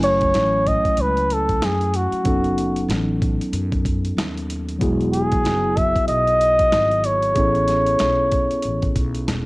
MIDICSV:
0, 0, Header, 1, 6, 480
1, 0, Start_track
1, 0, Tempo, 638298
1, 1697, Time_signature, 4, 2, 24, 8
1, 7112, End_track
2, 0, Start_track
2, 0, Title_t, "Flugelhorn"
2, 0, Program_c, 0, 56
2, 27, Note_on_c, 0, 73, 99
2, 508, Note_on_c, 0, 75, 86
2, 519, Note_off_c, 0, 73, 0
2, 761, Note_on_c, 0, 71, 96
2, 772, Note_off_c, 0, 75, 0
2, 999, Note_on_c, 0, 69, 83
2, 1011, Note_off_c, 0, 71, 0
2, 1241, Note_on_c, 0, 68, 88
2, 1252, Note_off_c, 0, 69, 0
2, 1473, Note_on_c, 0, 66, 77
2, 1484, Note_off_c, 0, 68, 0
2, 2185, Note_off_c, 0, 66, 0
2, 3859, Note_on_c, 0, 68, 94
2, 4342, Note_on_c, 0, 76, 83
2, 4354, Note_off_c, 0, 68, 0
2, 4568, Note_off_c, 0, 76, 0
2, 4572, Note_on_c, 0, 75, 119
2, 5307, Note_on_c, 0, 73, 92
2, 5319, Note_off_c, 0, 75, 0
2, 6742, Note_off_c, 0, 73, 0
2, 7112, End_track
3, 0, Start_track
3, 0, Title_t, "Tine electric piano"
3, 0, Program_c, 1, 4
3, 0, Note_on_c, 1, 54, 69
3, 0, Note_on_c, 1, 57, 69
3, 0, Note_on_c, 1, 61, 66
3, 0, Note_on_c, 1, 64, 61
3, 0, Note_on_c, 1, 80, 69
3, 1658, Note_off_c, 1, 54, 0
3, 1666, Note_off_c, 1, 61, 0
3, 1668, Note_off_c, 1, 64, 0
3, 1672, Note_off_c, 1, 80, 0
3, 1681, Note_on_c, 1, 54, 58
3, 1687, Note_on_c, 1, 59, 54
3, 1688, Note_off_c, 1, 57, 0
3, 1696, Note_on_c, 1, 61, 53
3, 1702, Note_on_c, 1, 63, 55
3, 1706, Note_on_c, 1, 69, 72
3, 3579, Note_off_c, 1, 54, 0
3, 3582, Note_off_c, 1, 59, 0
3, 3586, Note_off_c, 1, 61, 0
3, 3589, Note_off_c, 1, 63, 0
3, 3591, Note_off_c, 1, 69, 0
3, 3601, Note_on_c, 1, 54, 68
3, 3607, Note_on_c, 1, 59, 67
3, 3616, Note_on_c, 1, 66, 65
3, 3621, Note_on_c, 1, 64, 69
3, 3630, Note_on_c, 1, 68, 82
3, 5498, Note_off_c, 1, 54, 0
3, 5502, Note_off_c, 1, 59, 0
3, 5506, Note_off_c, 1, 66, 0
3, 5509, Note_off_c, 1, 64, 0
3, 5513, Note_off_c, 1, 68, 0
3, 5525, Note_on_c, 1, 68, 66
3, 5528, Note_on_c, 1, 59, 59
3, 5538, Note_on_c, 1, 61, 57
3, 5545, Note_on_c, 1, 64, 53
3, 5553, Note_on_c, 1, 69, 74
3, 7112, Note_off_c, 1, 59, 0
3, 7112, Note_off_c, 1, 61, 0
3, 7112, Note_off_c, 1, 64, 0
3, 7112, Note_off_c, 1, 68, 0
3, 7112, Note_off_c, 1, 69, 0
3, 7112, End_track
4, 0, Start_track
4, 0, Title_t, "Upright bass"
4, 0, Program_c, 2, 32
4, 0, Note_on_c, 2, 30, 92
4, 233, Note_off_c, 2, 30, 0
4, 254, Note_on_c, 2, 33, 87
4, 621, Note_off_c, 2, 33, 0
4, 734, Note_on_c, 2, 37, 94
4, 1191, Note_off_c, 2, 37, 0
4, 1215, Note_on_c, 2, 42, 88
4, 1581, Note_off_c, 2, 42, 0
4, 1696, Note_on_c, 2, 30, 87
4, 2152, Note_off_c, 2, 30, 0
4, 2169, Note_on_c, 2, 33, 98
4, 2538, Note_off_c, 2, 33, 0
4, 2652, Note_on_c, 2, 42, 91
4, 3110, Note_off_c, 2, 42, 0
4, 3135, Note_on_c, 2, 39, 84
4, 3592, Note_off_c, 2, 39, 0
4, 3621, Note_on_c, 2, 28, 99
4, 4075, Note_off_c, 2, 28, 0
4, 4088, Note_on_c, 2, 30, 83
4, 4457, Note_off_c, 2, 30, 0
4, 4571, Note_on_c, 2, 35, 87
4, 5030, Note_off_c, 2, 35, 0
4, 5061, Note_on_c, 2, 32, 81
4, 5515, Note_off_c, 2, 32, 0
4, 5534, Note_on_c, 2, 33, 107
4, 5991, Note_off_c, 2, 33, 0
4, 6022, Note_on_c, 2, 35, 78
4, 6385, Note_off_c, 2, 35, 0
4, 6502, Note_on_c, 2, 33, 83
4, 6727, Note_off_c, 2, 33, 0
4, 6737, Note_on_c, 2, 35, 82
4, 6965, Note_off_c, 2, 35, 0
4, 6971, Note_on_c, 2, 28, 70
4, 7112, Note_off_c, 2, 28, 0
4, 7112, End_track
5, 0, Start_track
5, 0, Title_t, "Muted upright bass strokes"
5, 639, Note_on_c, 9, 29, 35
5, 714, Note_off_c, 9, 29, 0
5, 1594, Note_on_c, 9, 29, 40
5, 1669, Note_off_c, 9, 29, 0
5, 2559, Note_on_c, 9, 29, 42
5, 2634, Note_off_c, 9, 29, 0
5, 4480, Note_on_c, 9, 29, 41
5, 4556, Note_off_c, 9, 29, 0
5, 6398, Note_on_c, 9, 29, 42
5, 6474, Note_off_c, 9, 29, 0
5, 7112, End_track
6, 0, Start_track
6, 0, Title_t, "Drums"
6, 20, Note_on_c, 9, 42, 63
6, 95, Note_off_c, 9, 42, 0
6, 156, Note_on_c, 9, 42, 49
6, 163, Note_on_c, 9, 36, 94
6, 231, Note_off_c, 9, 42, 0
6, 238, Note_off_c, 9, 36, 0
6, 255, Note_on_c, 9, 42, 78
6, 263, Note_on_c, 9, 38, 119
6, 331, Note_off_c, 9, 42, 0
6, 338, Note_off_c, 9, 38, 0
6, 500, Note_on_c, 9, 36, 92
6, 500, Note_on_c, 9, 42, 65
6, 575, Note_off_c, 9, 42, 0
6, 576, Note_off_c, 9, 36, 0
6, 639, Note_on_c, 9, 36, 80
6, 639, Note_on_c, 9, 42, 45
6, 714, Note_off_c, 9, 36, 0
6, 715, Note_off_c, 9, 42, 0
6, 729, Note_on_c, 9, 42, 78
6, 804, Note_off_c, 9, 42, 0
6, 880, Note_on_c, 9, 42, 35
6, 955, Note_off_c, 9, 42, 0
6, 980, Note_on_c, 9, 42, 70
6, 1055, Note_off_c, 9, 42, 0
6, 1121, Note_on_c, 9, 42, 49
6, 1122, Note_on_c, 9, 36, 77
6, 1196, Note_off_c, 9, 42, 0
6, 1197, Note_off_c, 9, 36, 0
6, 1219, Note_on_c, 9, 42, 93
6, 1220, Note_on_c, 9, 38, 115
6, 1295, Note_off_c, 9, 38, 0
6, 1295, Note_off_c, 9, 42, 0
6, 1361, Note_on_c, 9, 42, 36
6, 1437, Note_off_c, 9, 42, 0
6, 1457, Note_on_c, 9, 42, 75
6, 1532, Note_off_c, 9, 42, 0
6, 1597, Note_on_c, 9, 42, 38
6, 1672, Note_off_c, 9, 42, 0
6, 1692, Note_on_c, 9, 42, 88
6, 1696, Note_on_c, 9, 36, 114
6, 1767, Note_off_c, 9, 42, 0
6, 1771, Note_off_c, 9, 36, 0
6, 1837, Note_on_c, 9, 42, 35
6, 1912, Note_off_c, 9, 42, 0
6, 1940, Note_on_c, 9, 42, 70
6, 2015, Note_off_c, 9, 42, 0
6, 2078, Note_on_c, 9, 42, 48
6, 2153, Note_off_c, 9, 42, 0
6, 2179, Note_on_c, 9, 42, 74
6, 2186, Note_on_c, 9, 38, 116
6, 2254, Note_off_c, 9, 42, 0
6, 2261, Note_off_c, 9, 38, 0
6, 2421, Note_on_c, 9, 36, 100
6, 2423, Note_on_c, 9, 42, 69
6, 2496, Note_off_c, 9, 36, 0
6, 2498, Note_off_c, 9, 42, 0
6, 2567, Note_on_c, 9, 42, 48
6, 2642, Note_off_c, 9, 42, 0
6, 2656, Note_on_c, 9, 42, 81
6, 2731, Note_off_c, 9, 42, 0
6, 2799, Note_on_c, 9, 42, 35
6, 2800, Note_on_c, 9, 36, 89
6, 2874, Note_off_c, 9, 42, 0
6, 2875, Note_off_c, 9, 36, 0
6, 2897, Note_on_c, 9, 36, 93
6, 2901, Note_on_c, 9, 42, 75
6, 2972, Note_off_c, 9, 36, 0
6, 2976, Note_off_c, 9, 42, 0
6, 3043, Note_on_c, 9, 42, 52
6, 3119, Note_off_c, 9, 42, 0
6, 3146, Note_on_c, 9, 38, 116
6, 3146, Note_on_c, 9, 42, 85
6, 3221, Note_off_c, 9, 38, 0
6, 3221, Note_off_c, 9, 42, 0
6, 3289, Note_on_c, 9, 42, 38
6, 3364, Note_off_c, 9, 42, 0
6, 3383, Note_on_c, 9, 42, 73
6, 3458, Note_off_c, 9, 42, 0
6, 3523, Note_on_c, 9, 42, 46
6, 3598, Note_off_c, 9, 42, 0
6, 3618, Note_on_c, 9, 42, 87
6, 3619, Note_on_c, 9, 36, 113
6, 3693, Note_off_c, 9, 42, 0
6, 3694, Note_off_c, 9, 36, 0
6, 3765, Note_on_c, 9, 42, 31
6, 3840, Note_off_c, 9, 42, 0
6, 3861, Note_on_c, 9, 42, 73
6, 3936, Note_off_c, 9, 42, 0
6, 3997, Note_on_c, 9, 42, 47
6, 4002, Note_on_c, 9, 36, 97
6, 4072, Note_off_c, 9, 42, 0
6, 4077, Note_off_c, 9, 36, 0
6, 4099, Note_on_c, 9, 42, 70
6, 4106, Note_on_c, 9, 38, 126
6, 4174, Note_off_c, 9, 42, 0
6, 4181, Note_off_c, 9, 38, 0
6, 4338, Note_on_c, 9, 42, 77
6, 4339, Note_on_c, 9, 36, 99
6, 4413, Note_off_c, 9, 42, 0
6, 4415, Note_off_c, 9, 36, 0
6, 4478, Note_on_c, 9, 36, 84
6, 4481, Note_on_c, 9, 42, 52
6, 4554, Note_off_c, 9, 36, 0
6, 4556, Note_off_c, 9, 42, 0
6, 4571, Note_on_c, 9, 42, 79
6, 4646, Note_off_c, 9, 42, 0
6, 4717, Note_on_c, 9, 42, 34
6, 4792, Note_off_c, 9, 42, 0
6, 4819, Note_on_c, 9, 42, 74
6, 4894, Note_off_c, 9, 42, 0
6, 4955, Note_on_c, 9, 42, 57
6, 4959, Note_on_c, 9, 36, 84
6, 5031, Note_off_c, 9, 42, 0
6, 5034, Note_off_c, 9, 36, 0
6, 5055, Note_on_c, 9, 38, 109
6, 5055, Note_on_c, 9, 42, 95
6, 5130, Note_off_c, 9, 38, 0
6, 5130, Note_off_c, 9, 42, 0
6, 5199, Note_on_c, 9, 42, 34
6, 5274, Note_off_c, 9, 42, 0
6, 5292, Note_on_c, 9, 42, 79
6, 5368, Note_off_c, 9, 42, 0
6, 5433, Note_on_c, 9, 42, 48
6, 5509, Note_off_c, 9, 42, 0
6, 5532, Note_on_c, 9, 42, 77
6, 5534, Note_on_c, 9, 36, 120
6, 5607, Note_off_c, 9, 42, 0
6, 5609, Note_off_c, 9, 36, 0
6, 5677, Note_on_c, 9, 42, 34
6, 5753, Note_off_c, 9, 42, 0
6, 5774, Note_on_c, 9, 42, 75
6, 5783, Note_on_c, 9, 38, 35
6, 5849, Note_off_c, 9, 42, 0
6, 5858, Note_off_c, 9, 38, 0
6, 5914, Note_on_c, 9, 42, 46
6, 5990, Note_off_c, 9, 42, 0
6, 6009, Note_on_c, 9, 42, 80
6, 6016, Note_on_c, 9, 38, 123
6, 6084, Note_off_c, 9, 42, 0
6, 6091, Note_off_c, 9, 38, 0
6, 6254, Note_on_c, 9, 42, 74
6, 6258, Note_on_c, 9, 36, 91
6, 6329, Note_off_c, 9, 42, 0
6, 6333, Note_off_c, 9, 36, 0
6, 6398, Note_on_c, 9, 42, 45
6, 6473, Note_off_c, 9, 42, 0
6, 6486, Note_on_c, 9, 42, 73
6, 6561, Note_off_c, 9, 42, 0
6, 6635, Note_on_c, 9, 42, 36
6, 6638, Note_on_c, 9, 36, 83
6, 6711, Note_off_c, 9, 42, 0
6, 6714, Note_off_c, 9, 36, 0
6, 6736, Note_on_c, 9, 36, 93
6, 6736, Note_on_c, 9, 42, 83
6, 6811, Note_off_c, 9, 36, 0
6, 6811, Note_off_c, 9, 42, 0
6, 6878, Note_on_c, 9, 42, 50
6, 6953, Note_off_c, 9, 42, 0
6, 6979, Note_on_c, 9, 38, 108
6, 6979, Note_on_c, 9, 42, 90
6, 7054, Note_off_c, 9, 38, 0
6, 7054, Note_off_c, 9, 42, 0
6, 7112, End_track
0, 0, End_of_file